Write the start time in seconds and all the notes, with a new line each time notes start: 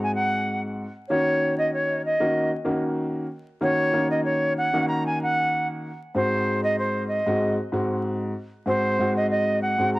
Already playing: G#2 G#3 C4 F#4
0.03 G#5
0.15 F#5
1.09 D#3 A#3 C#4 F#4 C#5
1.58 D#5
1.74 C#5
2.06 D#5
2.20 D#3 A#3 C#4 F#4
2.64 D#3 A#3 C#4 F#4
3.61 D#3 A#3 C#4 F#4 C#5
3.93 D#3 A#3 C#4 F#4
4.11 D#5
4.25 C#5
4.58 F#5
4.73 D#3 A#3 C#4 F#4
4.88 A#5
5.06 G#5
5.22 F#5
6.15 G#2 G#3 C4 F#4 C5
6.63 D#5
6.79 C5
7.08 D#5
7.26 G#2 G#3 C4 F#4
7.72 G#2 G#3 C4 F#4
8.66 G#2 G#3 C4 F#4 C5
8.99 G#2 G#3 C4 F#4
9.16 D#5
9.31 D#5
9.62 F#5
9.78 G#2 G#3 C4 F#4
9.94 A#5